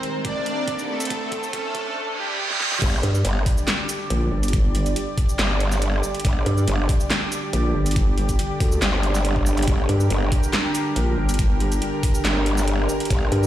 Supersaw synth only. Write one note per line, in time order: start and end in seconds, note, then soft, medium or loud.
0.00 0.17 C4 medium
0.00 0.17 C5 loud
0.25 0.81 D4 medium
0.25 0.81 D5 loud
0.89 1.45 A3 medium
0.89 1.45 A4 loud
1.53 2.09 A3 medium
1.53 2.10 A4 loud
2.18 2.74 G3 medium
2.18 2.74 G4 loud